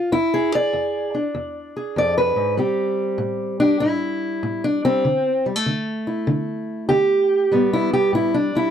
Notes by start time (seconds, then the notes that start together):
0.12 E2 E4
0.34 G#4
0.55 D5
0.73 E2
1.15 D4
1.35 E2
1.77 G#4
1.96 F2 D5
2.18 B4
2.36 G#2
2.57 A2 G3 C4 G4
3.18 A2
3.60 D4 G4
3.80 A2 E4
4.43 A2
4.64 D4
4.85 G3 C4
5.05 D3
5.46 G3
5.56 A3
5.66 D3
6.07 E4
6.27 D3
6.89 D3 G4
7.51 A2 G3 B3
7.73 E4
7.93 G3 G4
8.13 A2 E4
8.34 D4
8.55 G3 E4